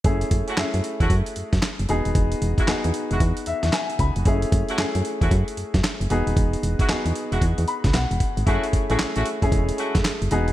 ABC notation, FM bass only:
X:1
M:4/4
L:1/16
Q:"Swing 16ths" 1/4=114
K:F#dor
V:1 name="FM bass" clef=bass
F,,,2 F,,, z F,, F,, z E,, F,, z F,, F,, z F,,, E,,, D,,, | E,,,2 E,,, z E,, E,, z E,,, E,, z E,, E,, z2 C,, ^E,,, | F,,,2 F,,, z F,, F,, z E,, F,, z F,, F,, z F,,, E,,, D,,, | E,,,2 E,,, z E,, E,, z E,,, E,, E,, z C,, B,,, E,,, z G,,, |
F,,, z2 A,,, z A,,, z F,,, E,,,2 z F,,, z F,,, E,,,2 |]